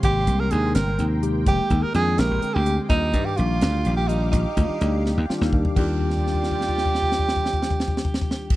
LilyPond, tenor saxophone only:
\new Staff \with { instrumentName = "Tenor saxophone" } { \time 6/8 \key ees \major \tempo 4. = 84 g'8. bes'16 aes'8 bes'8. r8. | g'8. bes'16 aes'8 bes'8. g'8 r16 | ees'8. g'16 f'4~ f'16 g'16 ees'8 | ees'2 r4 |
g'2.~ | g'2. | }